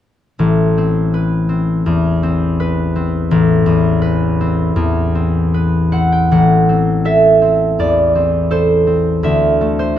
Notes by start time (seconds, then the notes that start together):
0.39 A1
0.78 C4
1.14 B4
1.49 C4
1.86 E2
2.23 C4
2.60 B4
2.96 C4
3.31 A1
3.66 E2
4.02 B4
4.41 C4
4.76 E2
5.15 C4
5.54 B4
5.92 C4 F#5
6.12 G5
6.31 A1 F#5
6.69 C4
7.05 A4 E5
7.42 C4
7.79 E2 D5
8.15 C4
8.51 A4 C5
8.87 C4
9.23 D2 E5
9.61 A3
9.79 C5